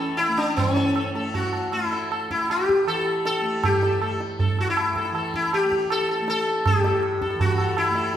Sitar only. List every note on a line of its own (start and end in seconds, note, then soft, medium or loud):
0.00 0.17 A4 soft
0.17 0.38 E4 loud
0.37 0.56 D4 medium
0.56 1.11 C#4 medium
0.76 0.94 A4 soft
0.96 1.14 A4 soft
1.15 1.33 A4 soft
1.35 1.72 F#4 medium
1.73 2.08 E4 medium
1.91 2.09 A4 soft
2.11 2.29 A4 soft
2.31 2.48 E4 medium
2.51 2.89 G4 medium
2.88 3.25 A4 medium
3.26 3.65 A4 medium
3.65 4.17 G4 medium
3.83 4.00 A4 soft
4.02 4.19 A4 soft
4.40 4.57 A4 soft
4.61 4.69 F#4 medium
4.70 5.22 E4 medium
4.97 5.14 A4 soft
5.15 5.32 A4 soft
5.36 5.54 E4 medium
5.54 5.92 G4 medium
5.92 6.10 A4 medium
6.11 6.27 A4 soft
6.30 6.64 A4 medium
6.67 7.18 G4 medium
6.86 7.02 A4 soft
7.22 7.39 A4 soft
7.41 7.77 F#4 medium
7.59 7.76 A4 soft
7.78 8.12 E4 medium
7.96 8.13 A4 soft